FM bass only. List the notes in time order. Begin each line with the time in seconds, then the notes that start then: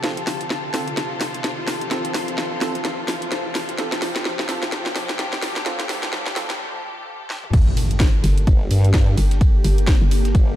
0.03 F1
0.74 F1
0.97 F1
1.21 F2
1.67 F1
2.14 F1
2.52 F1
2.85 F1
3.08 G1
3.69 F1
3.78 F1
4.49 F1
4.72 F1
4.96 F2
5.42 F1
7.53 G1
8.24 G1
9.17 G1
9.64 G1
10.02 G1